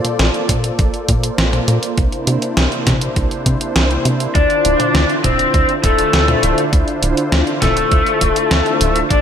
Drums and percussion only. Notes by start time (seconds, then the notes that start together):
0.05 closed hi-hat, mid tom
0.19 snare, closed hi-hat
0.34 closed hi-hat
0.49 kick, closed hi-hat, mid tom
0.64 closed hi-hat
0.79 kick, closed hi-hat
0.94 closed hi-hat
1.08 kick, closed hi-hat
1.23 closed hi-hat
1.38 snare, closed hi-hat
1.53 closed hi-hat, mid tom
1.68 closed hi-hat
1.83 closed hi-hat
1.98 kick, closed hi-hat
2.12 closed hi-hat
2.27 closed hi-hat
2.42 closed hi-hat
2.57 snare, closed hi-hat
2.72 closed hi-hat
2.87 kick, snare, closed hi-hat, mid tom
3.01 closed hi-hat
3.16 kick, closed hi-hat
3.31 closed hi-hat
3.46 kick, closed hi-hat
3.61 closed hi-hat
3.76 snare, closed hi-hat
3.91 closed hi-hat
4.05 closed hi-hat
4.20 closed hi-hat
4.35 kick, closed hi-hat
4.50 closed hi-hat
4.65 closed hi-hat
4.80 closed hi-hat, mid tom
4.95 snare, closed hi-hat
5.10 closed hi-hat
5.24 kick, closed hi-hat, mid tom
5.39 closed hi-hat
5.54 kick, closed hi-hat
5.69 closed hi-hat
5.84 kick, closed hi-hat
5.99 closed hi-hat
6.13 snare, closed hi-hat
6.28 closed hi-hat, mid tom
6.43 closed hi-hat
6.58 closed hi-hat
6.73 kick, closed hi-hat
6.88 closed hi-hat
7.03 closed hi-hat
7.17 closed hi-hat
7.32 snare, closed hi-hat
7.47 closed hi-hat
7.62 kick, snare, closed hi-hat, mid tom
7.77 closed hi-hat
7.92 kick, closed hi-hat
8.06 closed hi-hat
8.21 kick, closed hi-hat
8.36 closed hi-hat
8.51 snare, closed hi-hat
8.66 closed hi-hat
8.81 closed hi-hat
8.96 closed hi-hat
9.11 kick, closed hi-hat